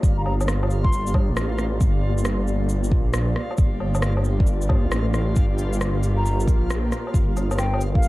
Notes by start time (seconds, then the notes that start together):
Already playing: A#3 F4 G4 D5 F5
0.03 G1, kick, shaker
0.18 A#5
0.24 A#5, low woodblock
0.41 low woodblock, shaker
0.48 cross-stick, shaker
0.63 low woodblock
0.70 shaker
0.84 C6, kick
0.93 shaker
1.07 shaker
1.14 G2, kick, low woodblock
1.29 A1
1.37 cross-stick, shaker
1.58 cross-stick, shaker
1.81 G1 G4, kick, shaker
2.18 shaker
2.25 cross-stick, shaker
2.48 shaker
2.69 shaker
2.84 shaker
2.91 A#1, kick
3.14 cross-stick, shaker
3.36 cross-stick
3.51 low woodblock
3.58 G1, kick, shaker
3.80 low woodblock
3.95 low woodblock, shaker
4.02 cross-stick, shaker
4.17 low woodblock
4.25 shaker
4.40 kick
4.47 shaker
4.62 shaker
4.69 G2, kick, low woodblock
4.84 A1
4.92 cross-stick, shaker
5.14 cross-stick, shaker
5.36 G1 A#4 F5, kick, shaker
5.58 cabasa
5.73 shaker
5.81 cross-stick, shaker
6.03 cabasa, shaker
6.17 A#5
6.26 shaker
6.40 shaker
6.47 A#1, kick, cabasa
6.70 cross-stick, shaker
6.92 cross-stick, cabasa
7.07 low woodblock
7.14 G1, kick, shaker
7.37 cabasa, low woodblock
7.51 low woodblock, shaker
7.58 G5, cross-stick, shaker
7.74 low woodblock
7.81 cabasa, shaker
7.95 F5, kick
8.03 shaker